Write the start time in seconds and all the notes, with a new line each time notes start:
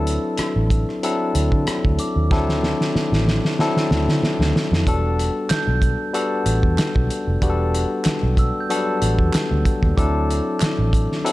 Already playing: D2 F#3 C4 D4 E4 A4 E6
0.07 closed hi-hat
0.38 muted fingered electric bass stroke, cross-stick, closed hi-hat
0.56 A1
0.70 kick, closed hi-hat
0.89 cross-stick
1.03 F#3 C4 D4 E4 A4, closed hi-hat
1.35 D2, closed hi-hat
1.52 D3, kick
1.67 muted fingered electric bass stroke, cross-stick, closed hi-hat
1.85 D2, kick
1.99 D6, closed hi-hat
2.16 D#2
2.31 D2 F#3 C4 D4 E4 A4, kick, snare
2.49 snare
2.63 snare
2.81 snare
2.95 muted fingered electric bass stroke, snare
3.12 A1, snare
3.28 snare
3.45 snare
3.59 F#3 C4 D4 E4 A4, snare
3.77 snare
3.91 D2, snare
4.08 D3, snare
4.22 muted fingered electric bass stroke, snare
4.39 D2, snare
4.56 snare
4.72 F2, snare
4.87 E1 F#3 B3 D4 F#4 A4, kick, closed hi-hat
4.93 G3
5.19 closed hi-hat
5.49 G6, muted fingered electric bass stroke, snare, clap, closed hi-hat
5.68 B1
5.82 kick, closed hi-hat
6.13 G3 B3 D4 F#4 A4, closed hi-hat
6.46 A1, closed hi-hat
6.63 E2, kick
6.78 muted fingered electric bass stroke, snare, clap, closed hi-hat
6.96 B1, kick
7.10 closed hi-hat
7.27 F1
7.42 E1 G3 B3 D4 F#4 G4, kick, closed hi-hat
7.50 A4
7.75 closed hi-hat
8.05 muted fingered electric bass stroke, snare, clap, closed hi-hat
8.23 B1
8.37 E6, kick, closed hi-hat
8.61 G6
8.69 F#3 B3 D4 F#4 A4, closed hi-hat
8.76 G3
9.02 A1, closed hi-hat
9.18 E2, kick
9.34 muted fingered electric bass stroke, snare, clap, closed hi-hat
9.51 D2
9.65 kick, closed hi-hat
9.83 D#2, kick
9.97 D2 F#3 C4 D4 E4 A4 D6, kick, closed hi-hat
10.30 closed hi-hat
10.60 muted fingered electric bass stroke, snare, clap, closed hi-hat
10.79 A1
10.93 kick, closed hi-hat
11.12 snare
11.24 F#3 C4 D4 E4 A4, closed hi-hat